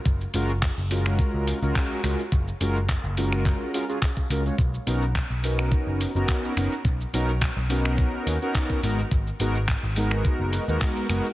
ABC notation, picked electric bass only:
X:1
M:4/4
L:1/16
Q:1/4=106
K:F#
V:1 name="Picked electric bass" clef=bass
F,,, z F,,,2 z F,,,3 z C,, z C,, z2 C,, z | F,,, z F,,,2 z F,,,3 z6 C,, z | B,,, z B,,,2 z B,,,3 z F,,, z F,,, z2 F,,, z | B,,, z B,,,2 z B,,,3 z2 D,, z3 G,,, z |
G,,, z G,,,2 z G,,,3 z F,,, z D,, z2 F,,, z |]